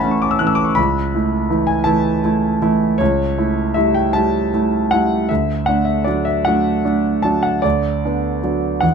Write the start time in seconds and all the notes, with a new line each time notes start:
Already playing: A1 E3 A3 C#4 E5 F#5 G#5 A5 B5
0.03 A3 C#4
0.11 C#6
0.22 D6
0.31 E6
0.39 E3 A3 C#4 F#6
0.47 E6
0.55 D6
0.65 C#6
0.75 C#2 B5
1.14 A3 E4
1.50 E3 A3 E4
1.67 G#5
1.84 E3 A3 E4 A5
2.24 A3 E4
2.62 E3 A3 E4
2.98 C#2 C#5
3.38 A3 E4
3.74 G3 A3 E4 E5
3.95 G5
4.13 G3 A3 E4 A5
4.54 A3 E4
4.91 G3 A3 E4 F#5
5.29 D2 E5
5.66 A3 D4 F#5
5.85 E5
6.04 F#3 A3 D4 D5
6.25 E5
6.45 F#3 A3 D4 F#5
6.85 A3 D4
7.22 F#3 A3 D4 A5
7.43 F#5
7.62 D2 D5
8.05 B3 D4
8.43 F#3 B3 D4
8.81 E2 F#5